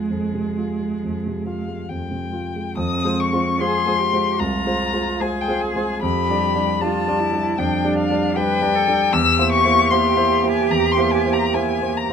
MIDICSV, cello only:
0, 0, Header, 1, 2, 480
1, 0, Start_track
1, 0, Key_signature, -4, "minor"
1, 0, Tempo, 924499
1, 537, Tempo, 857143
1, 1508, Time_signature, 4, 2, 24, 8
1, 1977, Tempo, 809717
1, 3417, Tempo, 777202
1, 6297, Tempo, 835655
1, 7119, End_track
2, 0, Start_track
2, 0, Title_t, "Cello"
2, 0, Program_c, 0, 42
2, 0, Note_on_c, 0, 56, 68
2, 1240, Note_off_c, 0, 56, 0
2, 1505, Note_on_c, 0, 60, 77
2, 1974, Note_on_c, 0, 68, 77
2, 1982, Note_off_c, 0, 60, 0
2, 2206, Note_on_c, 0, 67, 73
2, 2215, Note_off_c, 0, 68, 0
2, 2447, Note_on_c, 0, 65, 74
2, 2456, Note_off_c, 0, 67, 0
2, 2924, Note_on_c, 0, 68, 78
2, 2933, Note_off_c, 0, 65, 0
2, 3410, Note_off_c, 0, 68, 0
2, 3413, Note_on_c, 0, 67, 85
2, 3888, Note_off_c, 0, 67, 0
2, 3906, Note_on_c, 0, 65, 77
2, 4135, Note_on_c, 0, 64, 77
2, 4144, Note_off_c, 0, 65, 0
2, 4376, Note_on_c, 0, 62, 81
2, 4385, Note_off_c, 0, 64, 0
2, 4852, Note_on_c, 0, 71, 89
2, 4861, Note_off_c, 0, 62, 0
2, 5094, Note_on_c, 0, 69, 81
2, 5103, Note_off_c, 0, 71, 0
2, 5330, Note_on_c, 0, 67, 102
2, 5339, Note_off_c, 0, 69, 0
2, 7119, Note_off_c, 0, 67, 0
2, 7119, End_track
0, 0, End_of_file